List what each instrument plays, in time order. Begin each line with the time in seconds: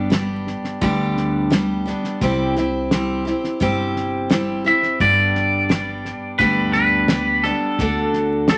Already playing: upright bass G1, steel-string acoustic guitar B3 D4 G4
0.10 steel-string acoustic guitar G3 B3 D4 G4, snare, hi-hat pedal
0.47 snare
0.64 snare
0.81 upright bass D2, steel-string acoustic guitar G2 D3 G3 B3 D4 G4, kick, snare
1.17 snare
1.50 steel-string acoustic guitar G3 B3 D4 G4, snare, hi-hat pedal
1.86 steel-string acoustic guitar G3 B3 D4 G4, snare
2.04 snare
2.21 upright bass C2, steel-string acoustic guitar C3 G3 C4 E4 G4, kick, snare
2.56 steel-string acoustic guitar C4 E4 G4, snare
2.91 steel-string acoustic guitar G3 C4 E4 G4, snare, hi-hat pedal
3.25 steel-string acoustic guitar C4 E4 G4, snare
3.44 snare
3.60 upright bass G1, steel-string acoustic guitar C3 G3 C4 E4 G4, kick, snare
3.96 snare
4.29 steel-string acoustic guitar G3 C4 E4 G4, snare, hi-hat pedal
4.64 steel-string acoustic guitar C4 E4 G4, clean electric guitar E5, snare
4.83 snare
5.00 upright bass G1, steel-string acoustic guitar G2 D3 G3 B3 D4 G4, clean electric guitar D5, kick, snare
5.35 snare
5.69 steel-string acoustic guitar G3 B3 D4 G4, snare, hi-hat pedal
6.05 snare
6.39 upright bass D2, steel-string acoustic guitar G2 D3 G3 B3 D4 G4, clean electric guitar B4, kick, snare
6.73 clean electric guitar B4, snare
7.08 steel-string acoustic guitar G3 B3 D4 G4, snare, hi-hat pedal
7.44 steel-string acoustic guitar G3 B3 D4 G4, clean electric guitar A4, snare
7.78 upright bass D2, steel-string acoustic guitar D3 A3 D4 F#4 A4, kick, snare
8.13 snare
8.48 steel-string acoustic guitar A3 D4 F#4, snare, hi-hat pedal
8.52 steel-string acoustic guitar A4